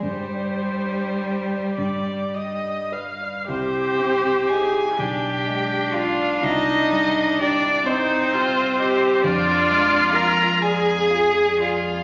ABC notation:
X:1
M:6/8
L:1/16
Q:3/8=41
K:Cm
V:1 name="Violin"
G8- G2 z2 | c4 a2 g4 f2 | e4 d2 c6 | d4 b2 a4 f2 |]
V:2 name="Grand piano"
G,, d G d c d G,, d G d =B d | C,,2 C2 [Ec]2 =B,,,2 ^G,2 [Fd]2 | C,,2 G,2 G2 e2 G2 e2 | F,,2 A,2 F2 d2 F2 d2 |]
V:3 name="Viola"
c6 d2 e2 f2 | G6 D6- | D6 E2 F2 G2 | F6 A6 |]
V:4 name="Cello"
G,8- G,2 z2 | C4 A2 G4 F2 | E4 D2 C6 | D4 B2 A4 F2 |]